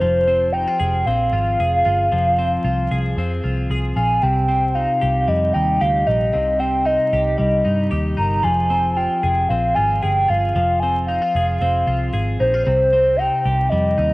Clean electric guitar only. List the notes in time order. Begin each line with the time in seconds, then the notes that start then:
Already playing: C4
0.01 F3
0.28 C4
0.54 D#4
0.67 F4
0.79 G#4
1.07 C4
1.33 F4
1.60 G#4
1.85 F4
2.12 F3
2.39 C4
2.65 F4
2.92 G#4
3.18 C4
3.44 F4
3.71 G#4
3.97 F4
4.23 C3
4.48 C4
4.75 D#4
5.01 G4
5.28 G3
5.54 D#4
5.81 G4
6.07 D#4
6.33 C3
6.60 C4
6.85 D#4
7.13 G4
7.38 G3
7.65 D#4
7.91 G4
8.17 D#4
8.43 F3
8.70 C4
8.97 F4
9.23 G#4
9.51 C4
9.76 F4
10.03 G#4
10.28 F4
10.56 F3
10.83 C4
11.08 D#4
11.22 F4
11.36 G#4
11.62 C4
11.87 F4
12.13 G#4
12.40 D#4
12.54 F4
12.67 C3
12.93 C4
13.19 D#4
13.46 G4
13.72 G3
13.98 D#4